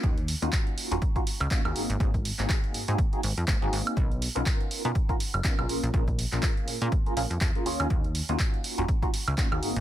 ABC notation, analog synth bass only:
X:1
M:4/4
L:1/16
Q:"Swing 16ths" 1/4=122
K:Ebm
V:1 name="Analog synth bass" clef=bass
E,,2 z E,, z3 E,,, z3 D,, z E,, A,,, A,,, | A,,,2 z A,,, z2 A,, A,, z2 A,,, F,, A,,, A,,, A,,, z | =B,,,2 z B,,, z3 =B,, z3 ^F,,, z B,,, _B,,, B,,, | z3 B,,, z2 B,, B,, z2 B,,, F,, F,, z E,, E,, |
E,,2 z E,, z3 E,,, z3 D,, z E,, A,,, A,,, |]